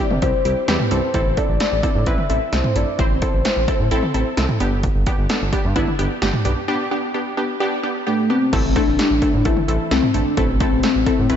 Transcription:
Already playing: D5
0.00 G3 C4 E4 G4
0.10 C3, mid tom
0.22 C2 G3 C4 E4 G4 C5, kick, closed hi-hat
0.45 C2 G3 C4 E4 G4, closed hi-hat
0.68 E2 G3 C4 E4 G4 B4, snare, closed hi-hat
0.80 mid tom
0.91 C2 G3 C4 E4 A4 C5, closed hi-hat
1.14 A1 C4 E4 A4, kick, closed hi-hat
1.26 A1
1.37 C4 E4 A4 D5, kick, closed hi-hat
1.49 A1
1.60 C4 E4 A4, snare, closed hi-hat
1.72 A1
1.83 C4 E4 A4, kick, closed hi-hat
1.95 A2
2.06 A1 C4 E4 B4 E5, kick, closed hi-hat
2.18 mid tom
2.29 A1 C4 E4 A4 E5, closed hi-hat
2.53 C2 C4 E4 A4 C5, snare, closed hi-hat
2.64 mid tom
2.76 A1 C4 E4 A4 D5, closed hi-hat
2.99 A1 C4 E4 C5, kick, closed hi-hat
3.10 A1
3.22 C4 E4 A4, kick, closed hi-hat
3.33 A1
3.45 C4 E4 B4, snare, closed hi-hat
3.56 A1
3.68 C4 E4 A4, kick, closed hi-hat
3.80 A2
3.91 A1 C4 E4 A4, closed hi-hat
4.03 mid tom
4.14 A1 C4 E4 A4, closed hi-hat
4.37 C2 C4 E4 A4, snare, closed hi-hat
4.49 mid tom
4.60 G1 B3 D4 G4, closed hi-hat
4.83 kick, closed hi-hat
4.95 G1
5.06 B3 D4 G4, kick, closed hi-hat
5.18 G1
5.29 B3 D4 A4, snare, closed hi-hat
5.41 G1
5.53 B3 D4 G4, kick, closed hi-hat
5.64 G2
5.76 G1 B3 D4 E4, kick, closed hi-hat
5.87 mid tom
5.99 G1 B3 D4 G4, closed hi-hat
6.22 G1 B3 D4 G4, snare, closed hi-hat
6.33 mid tom
6.45 B1 B3 D4 G4, closed hi-hat
6.68 B3 D4 G4
6.91 B3 D4 G4
7.14 B3 D4 G4
7.37 B3 D4 G4
7.60 B3 D4 G4
7.83 B3 D4 G4
8.07 A3 B3 D4 G4
8.30 B3 C4 D4 G4
8.53 A1 A3 C4 E4 A4, kick, closed hi-hat, crash
8.64 A1
8.76 A3 C4 D4 E4 A4, kick, closed hi-hat
8.88 A1
8.99 A3 C4 E4 G4, snare, closed hi-hat
9.10 A1
9.22 A3 C4 E4 A4, kick, closed hi-hat
9.34 A2
9.45 A1 A3 C4 E4 A4, kick, closed hi-hat
9.57 mid tom
9.68 A1 A3 C4 E4 A4, closed hi-hat
9.91 C2 A3 C4 E4 A4, snare, closed hi-hat
10.03 mid tom
10.14 A1 A3 C4 D4 E4 A4, closed hi-hat
10.37 A1 A3 C4 E4 A4, kick, closed hi-hat
10.49 A1
10.60 A3 C4 E4 A4, kick, closed hi-hat
10.72 A1
10.83 A3 C4 E4 A4, snare, closed hi-hat
10.95 A1
11.06 A3 C4 E4 A4, kick, closed hi-hat
11.18 A2
11.30 A1 A3 C4 E4 B4, closed hi-hat

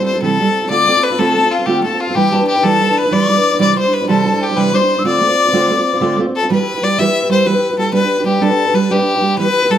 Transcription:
0.00 G3 C4 E4 A4
0.06 C5
0.13 G3 C4 E4 A4
0.22 C3 E3 G3 C4 E4 A4
0.40 G3 C4 E4 A4
0.48 G3 C4 E4 A4
0.62 G3 C4 E4 A4
0.70 D3 A3 C4 F4 A4 D5 D6
0.87 A3 C4 F4 A4
0.96 C4 F4 A4
1.04 B4 B5
1.10 C4 F4 A4
1.18 D3 A3 C4 F4 A4 B5
1.24 A5
1.36 A3 C4 F4 A4
1.43 C4 F4 A4
1.51 F4 F5
1.58 C4 F4 A4
1.66 D3 A3 C4 F4 G4 A4 G5
1.82 A3 C4 F4 A4 A5
1.91 C4 F4 A4
2.00 F4 F5
2.07 C4 F4 A4
2.15 E3 G3 D4 E4 G4 B4 G5
2.31 G3 D4 E4 B4 A5
2.39 D4 E4 B4
2.48 G4 G5
2.55 D4 E4 B4
2.63 E3 G3 D4 E4 A4 B4 B5
2.68 A5
2.79 G3 D4 E4 B4
2.88 D4 E4 B4
2.93 A4
2.98 B4 B5
3.04 D4 E4 B4
3.11 E3 G3 D4 E4 B4 D5
3.15 D6
3.28 G3 D4 E4 B4
3.37 D4 E4 B4
3.51 D4 E4 B4
3.58 C3 E3 G3 D4 E4 C5 D5 D6
3.76 G3 D4 C5 C6
3.85 G3 D4 E4 C5
3.92 B4 B5
4.00 G3 D4 E4 C5
4.07 C3 E3 G3 D4 E4 A4 C5 B5
4.12 A5
4.24 G3 D4 E4 C5
4.32 G3 D4 E4 C5
4.41 G4 G5
4.49 G3 D4 E4 C5
4.55 C3 E3 G3 D4 E4 B4 C5 B5
4.72 G3 D4 E4 C5 D6
4.77 E4 C5 C6
4.82 G3 D4
4.96 G3 D4 E4 C5 E6
5.04 D3 A3 C4 F4 C5 D5 E6
5.09 D6
5.20 A3 C4 F4 C5
5.28 C4 F4 C5
5.45 C4 F4 C5
5.52 D3 A3 C4 F4 C5
5.70 A3 C4 F4 C5
5.77 C4 F4 C5
5.93 C4 F4 C5
6.01 D3 A3 C4 F4 C5
6.18 A3 C4 F4 C5
6.26 C4 F4 C5
6.36 A4
6.42 C4 F4 C5
6.50 E3 G3 E4 G4 B4
6.59 E4 G4 B4
6.74 E4 G4 B4
6.82 G3 E4 G4 B4 D5
6.98 E3 G3 E4 G4 B4 E5
7.07 E4 G4 B4
7.22 E4 G4 B4
7.29 G3 E4 G4 B4 C5
7.45 E3 G3 E4 G4 B4
7.55 E4 G4 B4
7.70 E4 G4 B4
7.78 G3 E4 G4 A4 B4
7.92 G3 D4 G4 B4
8.01 D4 G4 B4
8.18 D4 G4 B4
8.24 G3 D4 G4 B4
8.41 G3 D4 G4 A4 B4
8.50 D4 G4 B4
8.66 D4 G4 B4
8.74 G3 D4 G4 B4
8.90 G3 D4 G4 B4
8.98 D4 G4 B4
9.14 D4 G4 B4
9.21 G3 D4 G4 B4
9.37 E3 G3 E4 G4 B4
9.47 E4 G4 B4
9.62 E4 G4 B4
9.70 G3 E4 G4 A4 B4

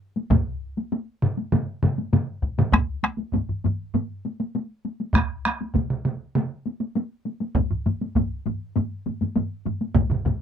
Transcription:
0.16 taiko high
0.30 taiko, taiko low-mid, taiko mid, taiko high
0.77 taiko high
0.92 taiko high
1.22 taiko low-mid, taiko mid
1.37 taiko high
1.52 taiko low-mid, taiko mid, taiko high
1.83 taiko low-mid, taiko mid, taiko high
1.98 taiko high
2.13 taiko low-mid, taiko mid, taiko high
2.42 taiko
2.58 taiko low-mid, taiko mid, taiko high
2.72 taiko rim, taiko, taiko high
3.03 taiko rim, taiko high
3.18 taiko high
3.33 taiko, taiko low-mid, taiko high
3.49 taiko low-mid
3.64 taiko low-mid, taiko high
3.94 taiko low-mid, taiko high
4.25 taiko high
4.40 taiko high
4.55 taiko high
4.85 taiko high
5.00 taiko high
5.14 taiko rim, taiko, taiko high
5.45 taiko rim, taiko high
5.61 taiko high
5.75 taiko, taiko mid, taiko high
5.90 taiko mid
6.05 taiko mid, taiko high
6.35 taiko mid, taiko high
6.66 taiko high
6.80 taiko high
6.95 taiko high
7.25 taiko high
7.40 taiko high
7.55 taiko, taiko low-mid, taiko high
7.71 taiko low-mid
7.86 taiko low-mid, taiko high
8.01 taiko high
8.15 taiko, taiko low-mid, taiko high
8.46 taiko low-mid, taiko high
8.76 taiko low-mid, taiko high
9.06 taiko low-mid, taiko high
9.21 taiko low-mid, taiko high
9.36 taiko low-mid, taiko high
9.65 taiko low-mid, taiko high
9.81 taiko high
9.95 taiko, taiko low-mid, taiko mid, taiko high
10.11 taiko low-mid, taiko mid
10.25 taiko, taiko low-mid, taiko mid, taiko high

